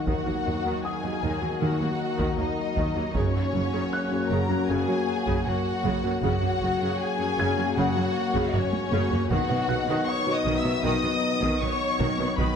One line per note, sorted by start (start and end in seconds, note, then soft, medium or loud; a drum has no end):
0.06 0.15 D#2 medium
0.06 0.19 D#3 medium
0.06 0.25 D#3 medium
0.06 3.11 F#3 medium
0.06 2.98 A#3 soft
0.06 3.10 D#4 medium
0.06 3.11 F#4 medium
0.06 2.98 F#4 medium
0.06 0.83 F#4 medium
0.06 3.11 A#4 medium
0.06 0.83 F#5 medium
0.06 taiko medium
0.26 0.34 D#2 soft
0.26 0.34 F#3 soft
0.26 0.34 A#3 soft
0.26 0.38 D#4 soft
0.45 0.53 D#2 soft
0.45 0.53 D#3 soft
0.45 0.53 F#3 soft
0.45 0.57 A#3 soft
0.64 0.72 D#2 medium
0.64 0.83 D#3 medium
0.64 0.76 D#3 medium
0.85 1.62 G#4 medium
0.85 1.60 G#5 medium
0.85 3.11 D#6 soft
1.03 1.11 D#2 soft
1.03 1.11 D#3 soft
1.03 1.11 F#3 soft
1.03 1.15 A#3 medium
1.22 1.30 D#2 medium
1.22 1.41 D#3 medium
1.22 1.35 D#3 medium
1.41 1.50 D#2 soft
1.41 1.49 F#3 soft
1.41 1.49 A#3 soft
1.41 1.54 A#3 medium
1.61 1.69 D#2 medium
1.61 1.79 D#3 medium
1.61 1.73 D#3 medium
1.61 2.38 F#4 medium
1.61 2.37 F#5 medium
1.80 1.88 D#2 soft
1.80 1.88 F#3 soft
1.80 1.88 A#3 soft
1.80 1.92 D#4 medium
2.18 2.27 D#2 medium
2.18 2.36 D#3 medium
2.18 2.30 D#3 medium
2.18 taiko medium
2.37 2.46 D#2 soft
2.37 2.45 F#3 soft
2.37 2.45 A#3 soft
2.37 2.50 D#4 soft
2.37 3.14 D#4 medium
2.37 3.14 D#5 medium
2.76 2.84 D#2 medium
2.76 2.95 D#3 medium
2.76 2.88 D#3 medium
2.76 taiko medium
2.96 3.04 D#2 soft
2.96 3.03 F#3 soft
2.96 3.03 A#3 soft
2.96 3.07 D#4 medium
3.15 3.23 F#1 medium
3.15 3.23 F#2 medium
3.15 3.33 C#3 medium
3.15 3.27 F#3 medium
3.15 6.19 F#3 medium
3.15 6.19 A#3 medium
3.15 6.21 A#3 medium
3.15 4.31 C#4 medium
3.15 6.19 F#4 medium
3.15 4.30 C#5 medium
3.15 6.22 C#5 medium
3.15 taiko medium
3.34 3.42 F#2 soft
3.34 3.42 F#3 soft
3.34 3.42 A#3 soft
3.34 3.46 F#4 soft
3.53 3.61 F#1 soft
3.53 3.62 F#2 soft
3.53 3.61 C#3 soft
3.53 3.61 F#3 soft
3.53 3.66 C#4 medium
3.73 3.81 F#2 medium
3.73 3.91 C#3 medium
3.73 3.85 F#3 medium
3.93 6.19 F#6 medium
4.11 4.19 F#2 soft
4.11 4.19 C#3 soft
4.11 4.19 F#3 soft
4.11 4.23 C#4 medium
4.30 4.38 F#1 medium
4.30 4.38 F#2 medium
4.30 4.49 C#3 medium
4.30 4.42 F#3 medium
4.30 4.69 A#4 medium
4.30 4.69 A#5 medium
4.49 4.58 F#2 soft
4.49 4.58 F#3 soft
4.49 4.58 A#3 soft
4.49 4.61 C#4 medium
4.68 4.77 F#1 medium
4.68 4.76 F#2 medium
4.68 4.87 C#3 medium
4.68 4.81 F#3 medium
4.68 5.45 G#4 medium
4.68 5.46 G#5 medium
4.88 4.96 F#2 soft
4.88 4.97 F#3 soft
4.88 4.97 A#3 soft
4.88 5.00 F#4 medium
5.27 5.34 F#2 medium
5.27 5.45 C#3 medium
5.27 5.38 F#3 medium
5.27 taiko medium
5.46 5.54 F#1 soft
5.46 5.54 F#2 soft
5.46 5.54 F#3 medium
5.46 5.54 A#3 soft
5.46 5.57 F#4 medium
5.46 6.22 F#4 medium
5.46 6.22 F#5 medium
5.84 5.92 F#1 medium
5.84 5.92 F#2 medium
5.84 6.02 C#3 medium
5.84 5.96 F#3 medium
5.84 taiko medium
6.04 6.11 F#2 medium
6.04 6.12 F#3 medium
6.04 6.12 A#3 medium
6.04 6.15 F#4 medium
6.22 6.30 F#1 medium
6.22 6.30 F#2 medium
6.22 6.41 C#3 medium
6.22 6.34 F#3 medium
6.22 9.27 F#3 medium
6.22 9.26 A#3 medium
6.22 9.14 A#3 medium
6.22 9.27 F#4 medium
6.22 9.14 F#4 medium
6.22 6.99 F#4 medium
6.22 9.27 C#5 medium
6.22 6.98 F#5 medium
6.22 taiko medium
6.42 6.50 F#2 medium
6.42 6.50 F#3 soft
6.42 6.50 A#3 soft
6.42 6.53 F#4 soft
6.61 6.69 F#1 soft
6.61 6.69 F#2 soft
6.61 6.70 C#3 soft
6.61 6.70 F#3 soft
6.61 6.73 C#4 medium
6.80 6.88 F#2 medium
6.80 6.99 C#3 medium
6.80 6.92 F#3 medium
7.00 7.77 G#4 medium
7.00 7.77 G#5 medium
7.18 7.27 F#2 soft
7.18 7.27 C#3 soft
7.18 7.27 F#3 soft
7.18 7.30 C#4 medium
7.37 7.46 F#1 medium
7.37 7.46 F#2 medium
7.37 7.56 C#3 medium
7.37 7.49 F#3 medium
7.37 9.66 G#6 medium
7.57 7.65 F#2 soft
7.57 7.65 F#3 soft
7.57 7.66 A#3 soft
7.57 7.68 C#4 medium
7.76 7.85 F#1 medium
7.76 7.84 F#2 medium
7.76 7.95 C#3 medium
7.76 7.88 F#3 medium
7.76 8.54 F#4 medium
7.76 8.52 F#5 medium
7.95 8.04 F#2 medium
7.95 8.04 F#3 soft
7.95 8.05 A#3 medium
7.95 8.07 F#4 medium
8.34 8.42 F#2 medium
8.34 8.52 C#3 medium
8.34 8.45 F#3 medium
8.34 taiko medium
8.53 8.62 F#1 medium
8.53 8.61 F#2 medium
8.53 8.62 F#3 medium
8.53 8.62 A#3 medium
8.53 9.31 C#4 medium
8.53 8.65 F#4 medium
8.53 9.30 C#5 medium
8.53 taiko low-mid medium
8.73 taiko high medium
8.92 9.00 F#1 medium
8.92 8.99 F#2 medium
8.92 9.10 C#3 medium
8.92 9.03 F#3 medium
8.92 taiko high medium
9.11 9.19 F#2 medium
9.11 9.19 F#3 medium
9.11 9.19 A#3 medium
9.11 9.23 F#4 medium
9.11 taiko low medium
9.30 9.38 B1 medium
9.30 9.38 B2 medium
9.30 9.49 D#3 medium
9.30 12.35 F#3 medium
9.30 9.42 B3 medium
9.30 12.35 B3 medium
9.30 12.37 B3 medium
9.30 12.34 D#4 medium
9.30 12.37 D#4 medium
9.30 10.06 F#4 medium
9.30 12.36 D#5 medium
9.30 10.06 F#5 medium
9.30 taiko medium
9.50 9.57 B2 medium
9.50 9.57 D#3 soft
9.50 9.58 B3 soft
9.50 9.61 B4 medium
9.68 9.77 B1 medium
9.68 9.77 B2 soft
9.68 9.77 D#3 soft
9.68 9.77 F#3 medium
9.68 9.80 F#4 medium
9.68 11.95 F#5 soft
9.68 11.96 F#6 medium
9.87 9.95 B2 medium
9.87 10.07 D#3 medium
9.87 9.99 B3 medium
10.07 10.32 C#5 medium
10.07 10.33 C#6 loud
10.26 10.34 B2 medium
10.26 10.35 D#3 soft
10.26 10.35 F#3 medium
10.26 10.38 F#4 medium
10.33 10.59 D#5 medium
10.33 10.59 D#6 medium
10.45 10.53 B1 medium
10.45 10.53 B2 medium
10.45 10.63 D#3 medium
10.45 10.57 B3 medium
10.58 10.85 E5 medium
10.58 10.84 E6 medium
10.64 10.72 B2 medium
10.64 10.72 D#3 medium
10.64 10.72 B3 medium
10.64 10.76 F#4 medium
10.84 10.92 B1 medium
10.84 10.92 B2 medium
10.84 11.02 D#3 medium
10.84 10.95 B3 medium
10.84 11.59 D#5 medium
10.84 11.60 D#6 medium
11.03 11.11 B2 medium
11.03 11.12 D#3 soft
11.03 11.12 B3 medium
11.03 11.15 B4 medium
11.41 11.49 B2 medium
11.41 11.60 D#3 medium
11.41 taiko medium
11.61 11.69 B1 medium
11.61 11.69 B2 soft
11.61 11.69 D#3 medium
11.61 11.69 B3 medium
11.61 11.73 B4 medium
11.61 12.37 C#5 medium
11.61 12.38 C#6 medium
11.99 12.07 B1 medium
11.99 12.07 B2 medium
11.99 12.18 D#3 medium
11.99 12.11 B3 medium
11.99 taiko medium
12.18 12.26 B2 medium
12.18 12.27 D#3 medium
12.18 12.27 B3 medium
12.18 12.31 B4 medium
12.38 12.46 B1 medium
12.38 12.46 B2 medium
12.38 12.56 D#3 medium
12.38 12.56 F#3 medium
12.38 12.56 B3 medium
12.38 12.49 B3 medium
12.38 12.56 B3 medium
12.38 12.56 D#4 medium
12.38 12.56 B4 medium
12.38 12.56 D#5 medium
12.38 12.56 B5 loud
12.38 taiko medium